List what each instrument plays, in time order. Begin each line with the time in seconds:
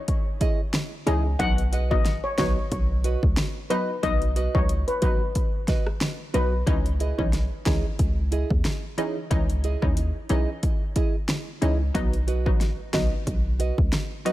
0.08 kick, closed hi-hat
0.40 nylon-string guitar E4 G#4 D#5, kick, closed hi-hat
0.74 snare, closed hi-hat
1.06 808-style bass C#2, synth stab E3 C#4 D#4, nylon-string guitar E4 G#4 D#5, steel pan G#4, closed hi-hat
1.25 muted nylon-string guitar stroke
1.39 808-style bass B1, synth stab F#3 B3 D#4, steel pan F#5, kick, closed hi-hat
1.58 closed hi-hat
1.72 nylon-string guitar F#4 B4 D#5, closed hi-hat
1.91 808-style bass A1, synth stab F#3 B3 D#4, steel pan D#5, kick
2.05 snare, closed hi-hat
2.24 steel pan C#5
2.38 808-style bass B1, synth stab F#3 B3 D#4, nylon-string guitar F#4 B4 D#5, steel pan C#5, kick, snare, closed hi-hat
2.72 808-style bass B1, kick, closed hi-hat
3.04 nylon-string guitar F#4 B4 D#5, closed hi-hat
3.23 808-style bass C#2, kick
3.37 snare, closed hi-hat
3.70 synth stab F#3 B3 D#4, nylon-string guitar F#4 B4 D#5, steel pan B4, closed hi-hat
4.03 808-style bass B1, synth stab F#3 B3 D#4, steel pan D#5, kick, closed hi-hat
4.22 closed hi-hat
4.36 nylon-string guitar F#4 B4 D#5, closed hi-hat
4.55 808-style bass C#2, synth stab F#3 B3 D#4, steel pan C#5, kick
4.69 closed hi-hat
4.88 steel pan B4, closed hi-hat
5.02 808-style bass A1, synth stab F#3 B3 D#4, nylon-string guitar F#4 B4 D#5, steel pan B4, kick, closed hi-hat
5.35 kick, closed hi-hat
5.68 nylon-string guitar F#4 B4 D#5, kick, snare, closed hi-hat
5.87 cross-stick
6.01 snare, closed hi-hat
6.34 808-style bass B1, synth stab F#3 B3 D#4, nylon-string guitar F#4 B4 D#5, steel pan B4, closed hi-hat
6.52 muted nylon-string guitar stroke
6.66 808-style bass C#2, synth stab E3 C#4 D#4, kick, closed hi-hat
6.86 closed hi-hat
7.00 nylon-string guitar E4 G#4 D#5, closed hi-hat
7.18 808-style bass B1, synth stab E3 C#4 D#4, kick
7.33 snare, closed hi-hat
7.66 808-style bass C#2, synth stab E3 C#4 D#4, nylon-string guitar E4 G#4 D#5, kick, snare, closed hi-hat
7.99 808-style bass C#2, kick, closed hi-hat
8.32 nylon-string guitar E4 G#4 D#5, closed hi-hat
8.51 808-style bass D#2, kick
8.65 snare, closed hi-hat
8.98 synth stab E3 C#4 D#4, nylon-string guitar E4 G#4 D#5, closed hi-hat
9.30 808-style bass C#2, synth stab E3 C#4 D#4, kick, closed hi-hat
9.50 closed hi-hat
9.64 nylon-string guitar E4 G#4 D#5, closed hi-hat
9.82 808-style bass D#2, synth stab E3 C#4 D#4, kick
9.97 closed hi-hat
10.29 808-style bass B1, synth stab E3 C#4 D#4, nylon-string guitar E4 G#4 D#5, closed hi-hat
10.63 kick, closed hi-hat
10.96 nylon-string guitar E4 G#4 D#5, kick, closed hi-hat
11.29 snare, closed hi-hat
11.62 808-style bass C#2, synth stab E3 C#4 D#4, nylon-string guitar E4 G#4 D#5, closed hi-hat
11.80 muted nylon-string guitar stroke
11.94 808-style bass B1, synth stab F#3 B3 D#4, kick, closed hi-hat
12.13 closed hi-hat
12.27 nylon-string guitar F#4 B4 D#5, closed hi-hat
12.46 808-style bass A1, synth stab F#3 B3 D#4, kick
12.61 snare, closed hi-hat
12.93 808-style bass B1, synth stab F#3 B3 D#4, nylon-string guitar F#4 B4 D#5, kick, snare, closed hi-hat
13.27 808-style bass B1, kick, closed hi-hat
13.59 nylon-string guitar F#4 B4 D#5, closed hi-hat
13.78 808-style bass C#2, kick
13.93 snare, closed hi-hat
14.25 synth stab F#3 B3 D#4, nylon-string guitar F#4 B4 D#5, closed hi-hat